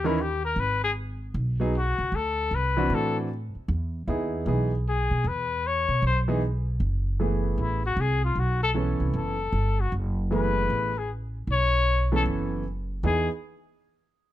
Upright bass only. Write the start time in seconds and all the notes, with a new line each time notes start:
Already playing: D#2
0.56 G#1
1.34 B1
1.98 C#2
2.12 D2
2.51 C2
2.90 A2
3.55 muted upright bass stroke
3.68 E2
4.07 D#2
4.46 B1
5.11 B2
5.24 E2
5.88 B2
6.02 B1
6.80 F#1
7.58 A1
7.96 C2
8.35 B1
9.00 C2
9.13 F#1
9.53 G1
9.92 F#1
10.70 A1
11.47 B1
12.25 F#1
13.03 E2